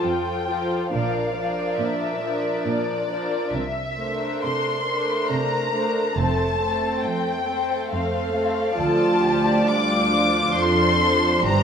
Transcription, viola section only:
0, 0, Header, 1, 2, 480
1, 0, Start_track
1, 0, Key_signature, -1, "major"
1, 0, Tempo, 873362
1, 504, Time_signature, 3, 2, 24, 8
1, 1943, Tempo, 906344
1, 2423, Tempo, 868307
1, 4823, Tempo, 892857
1, 6353, End_track
2, 0, Start_track
2, 0, Title_t, "Viola section"
2, 0, Program_c, 0, 48
2, 0, Note_on_c, 0, 53, 30
2, 0, Note_on_c, 0, 65, 33
2, 254, Note_off_c, 0, 53, 0
2, 254, Note_off_c, 0, 65, 0
2, 263, Note_on_c, 0, 53, 29
2, 264, Note_on_c, 0, 65, 32
2, 499, Note_off_c, 0, 53, 0
2, 499, Note_off_c, 0, 65, 0
2, 507, Note_on_c, 0, 62, 28
2, 508, Note_on_c, 0, 53, 30
2, 736, Note_off_c, 0, 53, 0
2, 739, Note_off_c, 0, 62, 0
2, 742, Note_on_c, 0, 53, 34
2, 746, Note_on_c, 0, 62, 34
2, 1214, Note_off_c, 0, 53, 0
2, 1215, Note_off_c, 0, 62, 0
2, 1225, Note_on_c, 0, 53, 33
2, 1227, Note_on_c, 0, 62, 33
2, 1694, Note_off_c, 0, 53, 0
2, 1695, Note_off_c, 0, 62, 0
2, 1700, Note_on_c, 0, 53, 33
2, 1701, Note_on_c, 0, 62, 35
2, 1936, Note_off_c, 0, 53, 0
2, 1936, Note_off_c, 0, 62, 0
2, 2178, Note_on_c, 0, 57, 35
2, 2179, Note_on_c, 0, 62, 34
2, 2654, Note_off_c, 0, 57, 0
2, 2655, Note_off_c, 0, 62, 0
2, 2661, Note_on_c, 0, 57, 37
2, 2662, Note_on_c, 0, 62, 37
2, 3131, Note_off_c, 0, 57, 0
2, 3131, Note_off_c, 0, 62, 0
2, 3137, Note_on_c, 0, 62, 33
2, 3139, Note_on_c, 0, 57, 37
2, 3374, Note_off_c, 0, 57, 0
2, 3375, Note_off_c, 0, 62, 0
2, 3381, Note_on_c, 0, 57, 33
2, 3381, Note_on_c, 0, 60, 36
2, 3616, Note_off_c, 0, 57, 0
2, 3618, Note_off_c, 0, 60, 0
2, 3623, Note_on_c, 0, 57, 37
2, 3624, Note_on_c, 0, 60, 37
2, 4097, Note_off_c, 0, 57, 0
2, 4098, Note_off_c, 0, 60, 0
2, 4108, Note_on_c, 0, 57, 43
2, 4108, Note_on_c, 0, 60, 41
2, 4574, Note_off_c, 0, 57, 0
2, 4576, Note_off_c, 0, 60, 0
2, 4581, Note_on_c, 0, 57, 43
2, 4582, Note_on_c, 0, 60, 40
2, 4816, Note_off_c, 0, 57, 0
2, 4817, Note_off_c, 0, 60, 0
2, 4822, Note_on_c, 0, 53, 46
2, 4824, Note_on_c, 0, 65, 42
2, 5294, Note_off_c, 0, 53, 0
2, 5295, Note_off_c, 0, 65, 0
2, 5320, Note_on_c, 0, 55, 47
2, 5322, Note_on_c, 0, 62, 45
2, 5556, Note_off_c, 0, 55, 0
2, 5557, Note_on_c, 0, 53, 51
2, 6265, Note_off_c, 0, 53, 0
2, 6267, Note_on_c, 0, 52, 46
2, 6353, Note_off_c, 0, 52, 0
2, 6353, Note_off_c, 0, 62, 0
2, 6353, End_track
0, 0, End_of_file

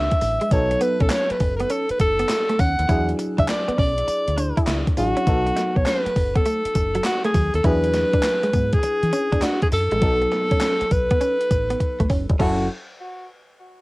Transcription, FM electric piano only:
0, 0, Header, 1, 2, 480
1, 0, Start_track
1, 0, Tempo, 594059
1, 415, Time_signature, 4, 2, 24, 8
1, 11162, End_track
2, 0, Start_track
2, 0, Title_t, "FM electric piano"
2, 0, Program_c, 0, 5
2, 0, Control_c, 0, 64, 127
2, 0, Note_on_c, 0, 54, 71
2, 0, Note_on_c, 0, 62, 65
2, 0, Note_on_c, 0, 64, 61
2, 0, Note_on_c, 0, 68, 75
2, 380, Note_off_c, 0, 54, 0
2, 383, Note_off_c, 0, 62, 0
2, 386, Note_off_c, 0, 64, 0
2, 389, Note_off_c, 0, 68, 0
2, 411, Note_on_c, 0, 54, 75
2, 418, Note_on_c, 0, 59, 63
2, 425, Note_on_c, 0, 63, 62
2, 427, Control_c, 0, 64, 0
2, 431, Note_on_c, 0, 69, 79
2, 572, Control_c, 0, 64, 127
2, 2301, Note_off_c, 0, 54, 0
2, 2304, Note_off_c, 0, 59, 0
2, 2308, Note_off_c, 0, 63, 0
2, 2311, Note_off_c, 0, 69, 0
2, 2333, Note_on_c, 0, 54, 71
2, 2340, Note_on_c, 0, 62, 65
2, 2345, Note_on_c, 0, 64, 66
2, 2348, Control_c, 0, 64, 0
2, 2352, Note_on_c, 0, 68, 80
2, 2488, Control_c, 0, 64, 127
2, 3982, Note_off_c, 0, 54, 0
2, 3985, Note_off_c, 0, 62, 0
2, 3988, Note_off_c, 0, 64, 0
2, 3992, Note_off_c, 0, 68, 0
2, 4018, Note_on_c, 0, 54, 52
2, 4021, Note_on_c, 0, 62, 46
2, 4024, Note_on_c, 0, 64, 51
2, 4028, Note_on_c, 0, 68, 55
2, 4242, Note_off_c, 0, 54, 0
2, 4251, Note_on_c, 0, 54, 75
2, 4258, Note_off_c, 0, 62, 0
2, 4259, Note_on_c, 0, 59, 64
2, 4260, Note_off_c, 0, 64, 0
2, 4262, Note_off_c, 0, 68, 0
2, 4266, Control_c, 0, 64, 0
2, 4266, Note_on_c, 0, 63, 61
2, 4272, Note_on_c, 0, 69, 78
2, 4402, Control_c, 0, 64, 127
2, 6141, Note_off_c, 0, 54, 0
2, 6145, Note_off_c, 0, 59, 0
2, 6148, Note_off_c, 0, 63, 0
2, 6151, Note_off_c, 0, 69, 0
2, 6175, Note_on_c, 0, 54, 70
2, 6182, Note_on_c, 0, 62, 68
2, 6185, Control_c, 0, 64, 0
2, 6188, Note_on_c, 0, 64, 68
2, 6194, Note_on_c, 0, 68, 83
2, 6339, Control_c, 0, 64, 127
2, 8063, Note_off_c, 0, 54, 0
2, 8066, Note_off_c, 0, 62, 0
2, 8070, Note_off_c, 0, 64, 0
2, 8073, Note_off_c, 0, 68, 0
2, 8088, Note_on_c, 0, 54, 74
2, 8096, Note_on_c, 0, 59, 65
2, 8101, Note_on_c, 0, 63, 68
2, 8104, Control_c, 0, 64, 0
2, 8108, Note_on_c, 0, 69, 75
2, 8234, Control_c, 0, 64, 127
2, 9980, Note_off_c, 0, 54, 0
2, 9983, Note_off_c, 0, 59, 0
2, 9986, Note_off_c, 0, 63, 0
2, 9989, Note_off_c, 0, 69, 0
2, 10021, Note_on_c, 0, 54, 85
2, 10021, Note_on_c, 0, 61, 81
2, 10021, Note_on_c, 0, 69, 95
2, 10022, Note_on_c, 0, 64, 78
2, 10026, Control_c, 0, 64, 0
2, 10242, Note_off_c, 0, 54, 0
2, 10242, Note_off_c, 0, 61, 0
2, 10242, Note_off_c, 0, 64, 0
2, 10242, Note_off_c, 0, 69, 0
2, 11162, End_track
0, 0, End_of_file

